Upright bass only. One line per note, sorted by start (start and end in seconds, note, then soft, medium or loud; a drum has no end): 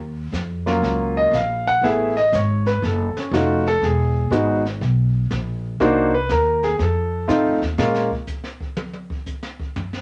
0.00 0.32 D#2 medium
0.32 0.81 F2 medium
0.82 1.31 C#2 medium
1.32 1.81 A#1 medium
1.81 2.30 A1 medium
2.32 2.81 G#1 loud
2.82 3.13 F#1 medium
3.15 muted upright bass stroke soft
3.31 3.80 F1 medium
3.82 4.30 E1 medium
4.31 4.79 G#1 medium
4.81 5.29 B1 medium
5.31 5.79 A#1 medium
5.80 6.28 C2 medium
6.31 6.78 D#2 loud
6.79 7.27 F2 medium
7.29 7.47 A2 medium
7.45 7.61 F2 medium
7.62 7.77 D#2 medium
7.78 8.10 A#2 medium